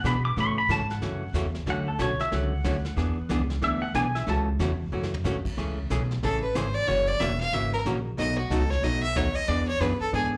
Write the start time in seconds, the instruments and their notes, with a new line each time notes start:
0.04 upright bass B2, hollow-body jazz guitar E3 B3 D4 G#4, pedal steel guitar B5, snare, hi-hat pedal
0.25 pedal steel guitar D6
0.36 upright bass A2, hollow-body jazz guitar C#3 E3 A3 C#4 F#4, pedal steel guitar C#6, brush sweep, snare
0.58 pedal steel guitar B5
0.69 upright bass G#2, hollow-body jazz guitar C#3 E3 A3 C#4 F#4, pedal steel guitar A5, snare, hi-hat pedal
0.90 pedal steel guitar F#5, snare
1.01 upright bass F#2, hollow-body jazz guitar C#3 E3 A3 C#4 F#4, brush sweep, snare
1.33 upright bass E2, hollow-body jazz guitar C#3 E3 A3 C#4 F#4, snare, hi-hat pedal
1.55 snare
1.66 upright bass D2, hollow-body jazz guitar D3 F#3 A3 C#4 F#4, pedal steel guitar F#5, brush sweep, snare
1.88 pedal steel guitar A4
1.99 upright bass B1, hollow-body jazz guitar D3 F#3 A3 C#4 F#4, pedal steel guitar C#5, snare, hi-hat pedal
2.19 pedal steel guitar E5, muted upright bass stroke, snare
2.31 upright bass C#2, hollow-body jazz guitar D3 F#3 A3 C#4 F#4, pedal steel guitar F#5, brush sweep, snare
2.64 upright bass D2, hollow-body jazz guitar D3 F#3 A3 C#4 F#4, snare, hi-hat pedal
2.85 snare
2.96 upright bass E2, hollow-body jazz guitar E3 B3 D4 G#4, brush sweep, snare
3.29 upright bass C#2, hollow-body jazz guitar E3 B3 D4 G#4, snare, hi-hat pedal
3.50 snare
3.62 upright bass D2, hollow-body jazz guitar E3 B3 D4 G#4, pedal steel guitar E5, brush sweep, snare
3.82 pedal steel guitar F#5
3.94 upright bass B1, hollow-body jazz guitar E3 B3 D4 G#4, pedal steel guitar G#5, snare, hi-hat pedal
4.15 pedal steel guitar E5, snare
4.26 upright bass C#2, hollow-body jazz guitar C#3 E3 A3 C#4 F#4, pedal steel guitar A5, brush sweep, snare
4.59 upright bass E2, hollow-body jazz guitar C#3 E3 A3 C#4 F#4, snare, hi-hat pedal
4.92 upright bass F#2, hollow-body jazz guitar C#3 E3 A3 C#4 F#4
5.03 snare
5.14 floor tom
5.24 upright bass G#2, hollow-body jazz guitar C#3 E3 A3 C#4 F#4, snare, hi-hat pedal
5.45 muted upright bass stroke, kick, crash
5.57 upright bass C#2, hollow-body jazz guitar C#3 E3 A3 C#4 G#4, brush sweep, snare
5.90 upright bass B1, hollow-body jazz guitar C#3 E3 A3 C#4 G#4, snare, hi-hat pedal
6.11 snare
6.23 upright bass A1, hollow-body jazz guitar C#3 E3 A3 C#4 G#4, fiddle A4, brush sweep, snare
6.42 fiddle B4
6.55 upright bass G#1, hollow-body jazz guitar C#3 E3 A3 C#4 G#4, fiddle C5, snare, hi-hat pedal
6.74 fiddle D5
6.87 upright bass F#1, hollow-body jazz guitar C#3 E3 A#3 C#4 F#4, fiddle C#5, brush sweep, snare
7.08 fiddle D5
7.20 upright bass E1, hollow-body jazz guitar C#3 E3 A#3 C#4 F#4, fiddle E5, snare, hi-hat pedal
7.41 fiddle F5, snare
7.53 upright bass G#1, hollow-body jazz guitar C#3 E3 A#3 C#4 F#4, fiddle E5, brush sweep, snare
7.73 fiddle A#4
7.85 upright bass A#1, hollow-body jazz guitar C#3 E3 A#3 C#4 F#4, snare, hi-hat pedal
8.17 upright bass B1, hollow-body jazz guitar B2 F#3 A3 D#4 F#4, fiddle D#5, brush sweep, snare
8.38 fiddle F#4
8.50 upright bass C#2, hollow-body jazz guitar B2 F#3 A3 D#4 F#4, fiddle A4, snare, hi-hat pedal
8.70 fiddle C#5, snare
8.82 upright bass B1, hollow-body jazz guitar B2 F#3 A3 D#4 F#4, fiddle D#5, brush sweep, snare
9.03 fiddle E5
9.15 upright bass D#2, hollow-body jazz guitar B2 F#3 A3 D#4 F#4, fiddle C#5, snare, hi-hat pedal
9.35 fiddle D#5, muted upright bass stroke
9.48 upright bass E2, hollow-body jazz guitar E3 B3 D4 G#4, fiddle D5, brush sweep, snare
9.68 fiddle C#5
9.80 upright bass F#2, hollow-body jazz guitar E3 B3 D4 G#4, fiddle B4, snare, hi-hat pedal
10.00 fiddle A4, muted upright bass stroke
10.12 upright bass G#2, hollow-body jazz guitar E3 B3 D4 G#4, fiddle G#4, brush sweep, snare